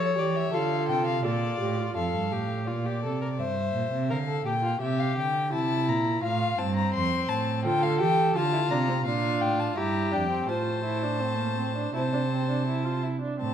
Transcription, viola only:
Already playing: A4
0.19 G4
0.54 F4
1.24 A4
1.61 G4
1.79 F4
7.64 F4
8.00 G4
8.35 F4
8.53 E4
8.71 D4
8.88 C4
9.06 D4
9.77 E4
10.12 D4
10.30 C4
10.48 F4
10.84 E4
11.03 D4
11.21 C4
11.39 A#3
11.58 C4
11.76 D4
11.94 E4
12.13 D4
12.31 C4
12.50 D4
12.67 E4
12.85 F4
13.03 E4
13.22 D4
13.40 C4

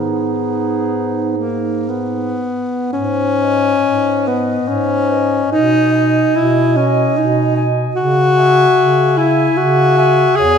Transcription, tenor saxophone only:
Already playing: B3
1.37 A#3
1.89 B3
2.93 C#4
4.27 B3
4.68 C#4
5.52 D#4
6.36 E4
6.76 C#4
7.17 D#4
7.95 F#4
9.17 E4
9.57 F#4
10.36 G#4

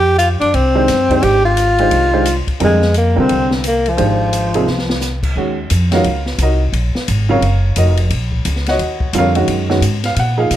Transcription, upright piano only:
0.75 D#3 G#3 D4 G4 C5
1.10 D#3 G#3 D4 G4 C5
1.79 D#3 G#3 D4 G4 C5
2.13 D#3 G#3 D4 G4 C5
2.60 D3 G3 C4 F4 A#4
3.16 D3 G3 C4 F4 A#4
3.97 D#3 G#3 D4 G4 C5
4.55 C3 F3 A#3 D#4 G#4
5.37 D#3 G#3 C#4 F#4
5.92 D#3 G#3 C#4 F4 F#4 A#4 C#5 F5
6.42 D#4 F#4 A#4 D#5
7.29 C#3 F#3 C4 F4 A#4 C#5 F5
7.78 D#4 F#4 A#4 D#5
8.69 F#4 C#5 D#5 F#5
9.14 D3 G3 C4 F4 F5
9.18 F4 A#4 C#5
9.36 D#3 G#3 C#4 F#4
9.69 D#3 G#3 C#4 F#4
10.06 F5
10.15 F5
10.19 F#5
10.37 F3 A#3 D#4 G#4 F5

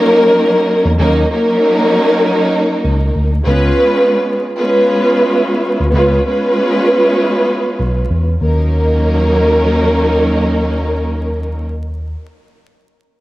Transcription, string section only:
Already playing: F#3 A#3 C#4 D#4 A#4
0.98 F#3 A#3 C#4 D#4 A#4
1.30 F#3 A#3 C#4 D#4 A#4
3.43 G#3 B3 C#4 F4 B4
4.56 G#3 B3 C#4 F4 B4
5.92 G#3 B3 C#4 F4 B4
6.24 G#3 B3 C#4 F4 B4
8.41 F#3 A#3 C#4 D#4 A#4

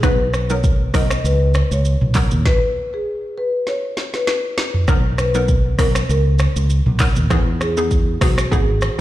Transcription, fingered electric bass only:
0.03 B1
0.94 B1
1.24 C#2
1.71 C#2
2.02 B1
2.32 D#2
4.88 B1
5.79 B1
6.09 C#2
6.56 C#2
6.87 B1
7.17 D#2
7.30 E2
8.21 B1
8.52 G#1

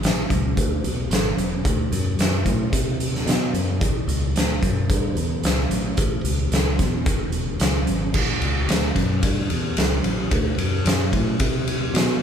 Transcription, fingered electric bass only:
0.03 A1
0.30 C#2
0.57 D2
0.84 B1
1.10 G#1
1.37 E1
1.65 D2
1.92 F#2
2.19 F#2
2.46 A2
2.73 C3
3.26 B2
3.53 F#2
3.81 A1
4.07 C#2
4.35 D2
4.63 F#2
4.90 G2
5.15 E2
5.43 C#2
5.70 A1
5.98 A1
6.24 C#2
6.52 C#2
6.79 E2
7.06 E1
7.60 C#2
7.88 G#1
8.14 A1
8.42 C#2
8.69 D2
8.96 F#2
9.23 G2
9.51 E2
9.78 C#2
10.04 A1
10.32 D2
10.58 F#2
10.86 F#2
11.13 A2
11.40 C3
11.94 B2

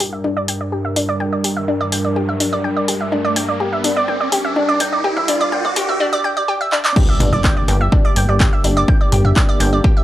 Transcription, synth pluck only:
0.00 G4
0.13 E5
0.24 D4
0.37 D5
0.48 G5
0.61 D5
0.72 G4
0.85 E5
0.96 D4
1.09 D5
1.20 G5
1.33 D5
1.44 G4
1.57 E5
1.68 D4
1.81 D5
1.92 G5
2.05 D5
2.16 G4
2.29 E5
2.40 D4
2.53 D5
2.64 G5
2.77 D5
2.88 G4
3.01 E5
3.12 D4
3.25 D5
3.36 G5
3.49 D5
3.60 G4
3.73 E5
3.84 D4
3.97 D5
4.08 G5
4.21 D5
4.32 G4
4.45 E5
4.56 D4
4.69 D5
4.80 G5
4.93 D5
5.04 G4
5.17 E5
5.28 D4
5.41 D5
5.52 G5
5.65 D5
5.76 G4
5.89 E5
6.00 D4
6.13 D5
6.24 G5
6.37 D5
6.48 G4
6.61 E5
6.72 D4
6.85 D5
6.96 G4
7.09 E5
7.20 D4
7.33 D5
7.44 G5
7.57 D5
7.68 G4
7.81 E5
7.92 D4
8.05 D5
8.16 G5
8.29 D5
8.40 G4
8.53 E5
8.64 D4
8.77 D5
8.88 G5
9.01 D5
9.12 G4
9.25 E5
9.36 D4
9.49 D5
9.60 G5
9.73 D5
9.84 G4
9.97 E5

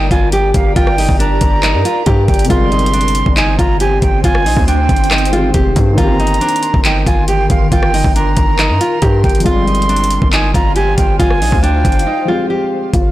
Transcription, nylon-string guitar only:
0.11 F4
0.33 G4
0.76 F4
0.98 D#4
1.19 D4
1.63 D#4
1.85 F4
2.06 G4
2.50 F4
2.72 D#4
2.93 D4
3.36 D#4
3.59 F4
3.81 G4
4.24 F4
4.46 D#4
4.68 D4
5.11 D#4
5.33 F4
5.54 G4
5.98 F4
6.20 D#4
6.41 D4
6.85 D#4
7.06 F4
7.28 G4
7.72 F4
7.94 D#4
8.16 D4
8.59 D#4
8.81 F4
9.02 G4
9.46 F4
9.67 D#4
9.89 D4
10.33 D#4
10.55 F4
10.76 G4
11.19 F4
11.42 D#4
11.63 D4
12.07 D#4
12.28 F4
12.50 G4
12.94 F4

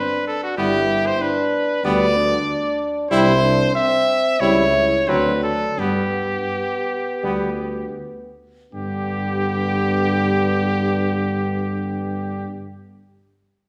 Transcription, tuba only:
0.58 G1
1.85 D2
3.11 C2
4.41 C#2
5.08 D2
5.78 G2
7.24 D2
8.74 G2

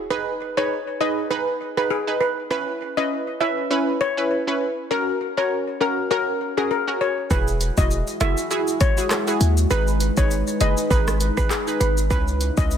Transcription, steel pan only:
0.10 B4
0.57 C#5
1.01 D#5
1.31 B4
1.77 B4
1.90 G#4
2.21 B4
2.51 B4
2.97 D#5
3.41 E5
4.01 C#5
4.91 A#4
5.37 C#5
5.81 A#4
6.11 A#4
6.58 G#4
6.71 A#4
7.01 C#5
7.31 B4
7.78 D#5
8.21 E5
8.81 C#5
9.71 B4
10.17 C#5
10.61 D#5
10.91 B4
11.37 B4
11.51 G#4
11.80 B4
12.10 B4
12.58 D#5

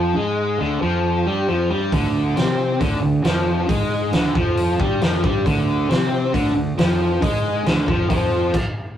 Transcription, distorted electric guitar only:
Already playing: F3
0.16 G#3
0.59 D3
0.82 F3
1.26 G3
1.48 F3
1.70 G3
1.92 D3
2.36 C4
2.80 D3
3.02 D3
3.25 F3
3.68 G#3
4.13 D3
4.35 F3
4.79 G3
5.01 F3
5.23 G3
5.45 D3
5.89 C4
6.33 D3
6.55 D3
6.78 F3
7.22 G#3
7.66 D3
7.89 F3
8.09 F3

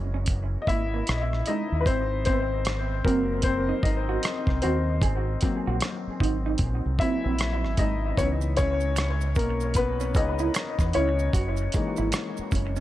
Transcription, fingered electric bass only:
Already playing: F#1
0.68 G#1
1.09 A#1
1.72 D#2
1.87 G#1
3.06 F#1
3.84 G#1
4.48 C2
4.64 D#2
5.03 G#1
5.67 A#1
6.07 muted fingered electric bass stroke
6.21 G#1
6.60 A#1
6.86 C2
7.25 A#1
7.65 G#1
7.79 G#1
8.19 C#2
9.37 B1
10.16 C#2
10.80 E2
10.96 C#2
11.35 F#1
11.99 G#1
12.39 muted fingered electric bass stroke
12.53 F#1

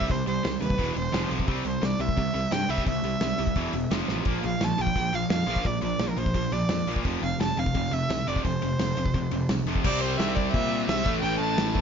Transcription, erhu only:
Already playing: E5
0.11 C5
0.27 C5
0.62 B4
0.96 C5
1.67 C5
1.85 D5
2.00 E5
2.53 G5
2.70 E5
2.88 E5
4.46 F5
4.64 A5
4.81 G5
5.15 F5
5.31 F5
5.66 D5
5.83 D5
6.10 A#4
6.18 C5
6.52 D5
7.23 F5
7.42 A5
7.59 F5
7.93 E5
8.28 D5
8.45 C5
9.85 D5
10.01 C5
10.18 E5
10.35 D5
10.52 E5
10.87 E5
11.21 G5
11.39 A5

